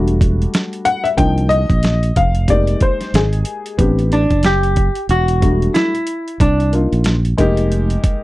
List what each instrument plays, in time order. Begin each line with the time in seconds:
Already playing: fretless electric bass E1, upright piano G3 A3 D4 F#4
0.08 closed hi-hat
0.21 kick, closed hi-hat
0.42 closed hi-hat
0.54 snare, closed hi-hat
0.73 closed hi-hat
0.85 upright piano F#5, closed hi-hat
1.04 upright piano E5, closed hi-hat
1.17 fretless electric bass C2, upright piano F3 A#3 D4 D#4 G5, kick, closed hi-hat
1.38 closed hi-hat
1.49 upright piano D#5, closed hi-hat
1.70 fretless electric bass A#1, kick, closed hi-hat
1.83 snare, closed hi-hat
2.03 closed hi-hat
2.16 fretless electric bass F1, upright piano F5, kick, closed hi-hat
2.35 closed hi-hat
2.48 upright piano G#3 A#3 D#4 G4 D5, kick, closed hi-hat
2.67 closed hi-hat
2.81 upright piano C5, kick, closed hi-hat
3.01 snare, closed hi-hat
3.14 fretless electric bass G#1, upright piano G#4, snare, closed hi-hat
3.33 closed hi-hat
3.45 closed hi-hat
3.66 closed hi-hat
3.78 fretless electric bass A1, upright piano B3 C4 D4 G4, kick, closed hi-hat
3.99 closed hi-hat
4.12 hollow-body jazz guitar D4, closed hi-hat
4.30 fretless electric bass F#1, kick, closed hi-hat
4.43 hollow-body jazz guitar G4, snare, closed hi-hat
4.63 closed hi-hat
4.76 kick, closed hi-hat
4.95 closed hi-hat
5.09 fretless electric bass E1, hollow-body jazz guitar F#4, closed hi-hat
5.28 closed hi-hat
5.41 upright piano G3 A3 D4 F#4, kick, closed hi-hat
5.62 closed hi-hat
5.74 hollow-body jazz guitar E4, snare, closed hi-hat
5.95 closed hi-hat
6.07 closed hi-hat
6.28 closed hi-hat
6.40 fretless electric bass C2, hollow-body jazz guitar D4, kick, closed hi-hat
6.60 closed hi-hat
6.73 upright piano A#3 D4 D#4 F4, closed hi-hat
6.92 fretless electric bass A#1, closed hi-hat
7.04 snare, closed hi-hat
7.25 closed hi-hat
7.37 fretless electric bass F1, upright piano G#3 A#3 D#4 G4, kick, closed hi-hat
7.57 closed hi-hat
7.72 closed hi-hat
7.90 closed hi-hat
8.04 kick, closed hi-hat